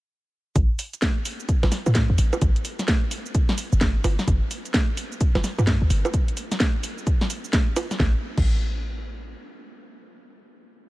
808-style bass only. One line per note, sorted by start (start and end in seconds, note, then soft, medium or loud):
0.56 0.69 A1 loud
1.63 1.71 A1 loud
1.86 2.07 A2 medium
2.10 2.17 E2 medium
2.18 2.31 A1 medium
2.42 2.55 A1 loud
3.73 4.03 G1 loud
4.04 4.17 G1 loud
4.28 4.41 G1 loud
5.35 5.43 G1 loud
5.58 5.79 G2 medium
5.82 5.89 D2 medium
5.90 6.03 G1 loud
8.00 8.15 A1 loud
8.38 9.35 A1 loud